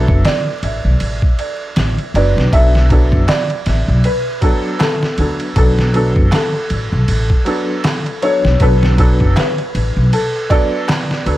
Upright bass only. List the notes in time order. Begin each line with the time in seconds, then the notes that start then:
0.09 F#1
0.63 A1
0.85 B1
1.01 A1
1.77 A1
2.14 F#1
2.36 B1
2.53 B1
3.12 F#1
3.66 A1
3.88 B1
5.18 D2
5.56 B1
6.16 F#1
6.70 A1
6.93 B1
7.08 A1
8.45 B1
8.61 B1
9.21 F#1
9.75 A1
9.96 B1
11.26 D2